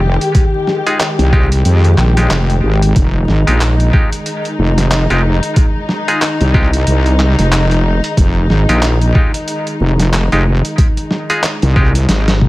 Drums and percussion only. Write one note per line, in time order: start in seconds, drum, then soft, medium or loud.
0.21 closed hi-hat medium
0.35 kick loud
0.35 closed hi-hat medium
0.67 snare soft
0.86 closed hi-hat medium
1.00 clap loud
1.00 closed hi-hat medium
1.19 closed hi-hat soft
1.33 kick loud
1.52 closed hi-hat medium
1.65 closed hi-hat medium
1.85 closed hi-hat soft
1.98 clap medium
2.17 snare soft
2.17 closed hi-hat medium
2.31 clap loud
2.31 closed hi-hat medium
2.50 closed hi-hat soft
2.82 closed hi-hat medium
2.96 kick loud
2.96 closed hi-hat medium
3.28 snare soft
3.47 closed hi-hat soft
3.61 clap loud
3.61 closed hi-hat medium
3.80 closed hi-hat soft
3.93 kick loud
4.13 closed hi-hat medium
4.26 closed hi-hat medium
4.45 closed hi-hat soft
4.78 snare soft
4.78 closed hi-hat medium
4.91 clap loud
4.91 closed hi-hat medium
5.10 closed hi-hat soft
5.43 closed hi-hat soft
5.56 kick loud
5.56 closed hi-hat medium
5.89 snare soft
6.08 closed hi-hat soft
6.22 clap loud
6.22 closed hi-hat medium
6.41 closed hi-hat soft
6.54 kick loud
6.73 closed hi-hat medium
6.87 closed hi-hat medium
7.06 closed hi-hat soft
7.19 clap medium
7.39 snare soft
7.39 closed hi-hat medium
7.52 clap loud
7.52 closed hi-hat medium
7.71 closed hi-hat soft
8.04 closed hi-hat soft
8.17 kick loud
8.17 closed hi-hat medium
8.50 snare soft
8.69 closed hi-hat medium
8.82 clap loud
8.82 closed hi-hat medium
9.02 closed hi-hat soft
9.15 kick loud
9.34 closed hi-hat medium
9.48 closed hi-hat medium
9.67 closed hi-hat soft
9.99 snare soft
9.99 closed hi-hat medium
10.13 clap loud
10.13 closed hi-hat medium
10.32 closed hi-hat soft
10.65 closed hi-hat medium
10.78 kick loud
10.78 closed hi-hat medium
10.97 closed hi-hat soft
11.11 snare soft
11.30 closed hi-hat medium
11.43 clap loud
11.43 closed hi-hat medium
11.62 closed hi-hat soft
11.76 kick loud
11.95 closed hi-hat medium
12.09 snare medium
12.09 closed hi-hat medium
12.28 snare medium
12.28 closed hi-hat soft
12.41 high tom medium